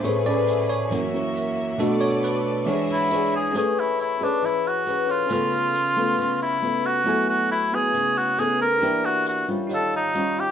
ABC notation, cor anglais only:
X:1
M:4/4
L:1/8
Q:1/4=137
K:A
V:1 name="Cor anglais"
z8 | z4 z E2 G | G E E D E F2 =F- | =F4- F E2 ^F- |
F F E G2 F G _B- | _B F F z A ^D2 =G |]